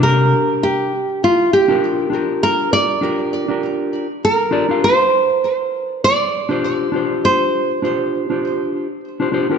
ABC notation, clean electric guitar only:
X:1
M:4/4
L:1/16
Q:"Swing 16ths" 1/4=100
K:Cdor
V:1 name="Clean electric guitar"
[C,DFGB]6 z4 z [DFGB]3 [DFGB]2- | [DFGB]4 [DFGB]3 [DFGB]4 z3 [DFGd] [DFGf]- | [DFGf] z8 z2 [DFGc]3 [DFGc]2- | [DFGc]4 [DFGc]3 [DFGc]4 z2 [DFGc] [DFGc] [DFGB] |]